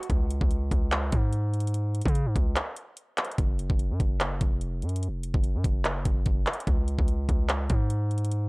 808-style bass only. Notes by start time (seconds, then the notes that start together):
0.10 C#2
0.41 C#2
0.71 C#2
1.12 G#2
2.05 C#3
2.26 G#2
2.36 C#2
3.38 F#1
3.70 F#1
3.90 F#2
4.00 F#1
4.41 F1
4.82 F#2
5.08 F1
5.34 F#1
5.55 F#2
5.64 F#1
6.05 F#1
6.26 F#1
6.67 C#2
6.99 C#2
7.29 C#2
7.70 G#2